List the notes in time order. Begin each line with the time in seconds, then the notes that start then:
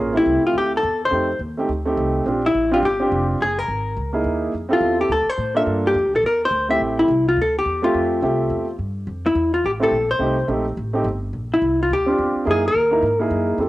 Already playing: A1 A#3 C#4 F4 G#4
0.13 A3 C4 E4 G4
0.26 C2
0.44 F4, muted upright bass stroke
0.54 D2
0.58 G4
0.77 A4
0.83 E2
1.05 C5
1.10 F2 A3 C4 D#4 G4
1.39 D#2
1.57 A3 C4 D#4 G4
1.69 D2
1.85 A3 C4 D#4 G4
1.97 C2
2.26 A#1 C4 D4 F4 G4
2.46 E4
2.54 A1
2.71 C4 D4 F4 G4
2.83 G1 G4
3.00 C4 D4 F4 G4
3.12 F1
3.41 F#1 G#4
3.59 A#4
3.68 G#1
3.97 C#2
4.13 A#3 D#4 E4 G#4
4.24 D#2
4.54 F2
4.69 C4 E4 G4 A4
4.73 F4
4.81 E2
5.01 G4
5.09 D2 A4
5.27 C5, muted upright bass stroke
5.38 A2
5.55 A#3 D4 F4 A4 E5
5.66 G2
5.87 G4
5.94 F2
6.04 D2
6.13 A#1 A4
6.23 E2 A#4
6.45 C5
6.51 D2
6.69 A3 C4 E4 G4 E5
6.80 A1
6.99 E4
7.08 C2
7.29 F4
7.37 D2
7.42 A4
7.59 G4
7.65 E2
7.82 A3 C4 F4 G4 E5
7.94 F2
8.22 C2 A3 C4 G4 E5
8.50 E2
8.79 G2
9.07 F2
9.26 E4
9.35 E2
9.54 F4
9.64 A1 G4
9.80 A3 C4 E4 G4 A4
9.91 A#1
10.11 C5
10.19 C2 A3 C4 D#4 G4
10.48 A#1 A3 C4 D#4 G4
10.77 A1
10.93 A3 C4 D#4 G4
11.04 G1
11.33 A#1
11.54 E4
11.62 C2
11.83 F4
11.90 D2 G4
12.06 C4 D4 F4 G4
12.18 E2
12.36 muted upright bass stroke
12.45 F#2 A#3 D#4 E4 G#4
12.51 G#4
12.68 A#4
12.74 D#2
12.91 A#3 D#4 E4 A#4
13.02 G#2
13.19 A#3 D#4 E4 G#4
13.25 G#4
13.30 F#2
13.58 F2 C4 E4 G4 A4